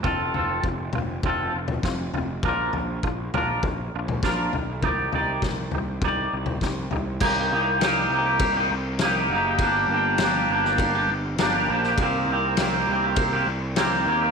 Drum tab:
CC |----------------|----------------|----------------|x---------------|
RD |----------------|----------------|----------------|----b---b---b---|
SD |------------o---|------------o---|----o-------o---|----o-------o---|
T2 |------o----o----|------o----o----|----o------o----|----------------|
FT |o-o---o-o--o--o-|o-o---o-o--o--o-|o-o---o-o--o--o-|----------------|
BD |o---o---o---o---|o---o---o---o---|o---o---o---o---|o-------o-------|

CC |----------------|----------------|
RD |b---b---b---b---|b---b---b---b---|
SD |----o--o----o--o|----o-------o---|
T2 |----------------|----------------|
FT |----------------|----------------|
BD |o-------o-------|o-------o-------|